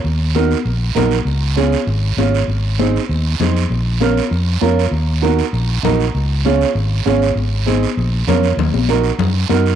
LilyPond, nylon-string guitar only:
\new Staff \with { instrumentName = "Nylon-string guitar" } { \time 4/4 \key ees \dorian \tempo 4 = 197 r4 <ees' ges' bes'>8 r4. <ees' ges' bes'>8 r8 | r4 <des' f' aes'>8 r4. <des' f' aes'>8 r8 | r4 <c' ees' aes'>8 r4. <c' ees' aes'>8 r8 | r4 <des' f' bes'>8 r4. <des' f' bes'>8 r8 |
r4 <ees' ges' bes'>8 r4. <ees' ges' bes'>8 r8 | r4 <des' f' aes'>8 r4. <des' f' aes'>8 r8 | r4 <c' ees' aes'>8 r4. <des' f' bes'>8 r8 | r4 <ees' ges' bes'>8 r4. <ees' ges' bes'>8 r8 | }